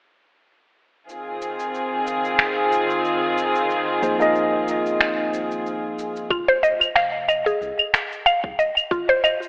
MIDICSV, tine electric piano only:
0, 0, Header, 1, 2, 480
1, 0, Start_track
1, 0, Key_signature, -4, "minor"
1, 0, Tempo, 652174
1, 801, Time_signature, 4, 2, 24, 8
1, 6982, End_track
2, 0, Start_track
2, 0, Title_t, "Tine electric piano"
2, 0, Program_c, 0, 4
2, 2956, Note_on_c, 0, 53, 72
2, 2958, Note_on_c, 0, 58, 69
2, 2961, Note_on_c, 0, 63, 68
2, 2965, Note_on_c, 0, 68, 72
2, 2969, Note_on_c, 0, 72, 77
2, 3058, Note_off_c, 0, 53, 0
2, 3059, Note_off_c, 0, 58, 0
2, 3060, Note_off_c, 0, 63, 0
2, 3062, Note_off_c, 0, 68, 0
2, 3064, Note_off_c, 0, 72, 0
2, 3079, Note_on_c, 0, 53, 88
2, 3086, Note_on_c, 0, 58, 80
2, 3092, Note_on_c, 0, 63, 77
2, 3099, Note_on_c, 0, 68, 76
2, 3107, Note_on_c, 0, 75, 101
2, 4621, Note_off_c, 0, 53, 0
2, 4625, Note_off_c, 0, 58, 0
2, 4628, Note_off_c, 0, 63, 0
2, 4631, Note_off_c, 0, 68, 0
2, 4635, Note_off_c, 0, 75, 0
2, 6982, End_track
0, 0, End_of_file